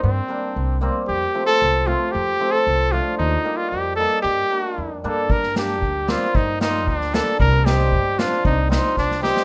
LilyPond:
<<
  \new Staff \with { instrumentName = "Cornet" } { \time 2/4 \key g \minor \tempo 4 = 114 c'4. r8 | g'8. a'8. f'8 | g'8. a'8. f'8 | ees'8. f'16 g'8 a'8 |
g'4. a'8 | bes'8 g'4 f'8 | ees'8 ees'8 d'8 a'8 | bes'8 g'4 f'8 |
ees'8 ees'8 d'8 g'8 | }
  \new Staff \with { instrumentName = "Hammered dulcimer" } { \time 2/4 \key g \minor r8 <g bes d'>16 r8. <g bes c'>16 r16 | r8 <f a c'>16 r8. <f a c'>16 r16 | r8 <f a c'>16 r8. <f a d'>16 r16 | r8 <g bes ees'>16 r8. <g bes ees'>16 r16 |
r8 <g bes d'>16 r8. <g bes d'>16 r16 | r8 <g bes d'>16 r8. <g bes c'>16 r16 | r8 <g bes f'>16 r8. <g bes d'>16 r16 | r8 <g c' ees'>16 r8. <g c' d'>16 r16 |
r8 <g c' f'>16 r8. <g c' ees'>16 r16 | }
  \new Staff \with { instrumentName = "Upright bass" } { \clef bass \time 2/4 \key g \minor g,8 r8 c,4 | f,8 r8 c,4 | f,8 r8 c,4 | ees,8 r8 f,4 |
g,8 r8 f,8 g,8 | g,4 d,4 | g,4 d,4 | c,4 g,4 |
c,4 c,4 | }
  \new DrumStaff \with { instrumentName = "Drums" } \drummode { \time 2/4 r4 r4 | r4 r4 | r4 r4 | r4 r4 |
r4 r4 | bd16 sn16 sn8 bd8 sn8 | bd8 sn8 bd16 sn16 sn8 | bd8 sn8 bd8 sn8 |
bd8 sn8 <bd sn>16 sn16 sn16 sn16 | }
>>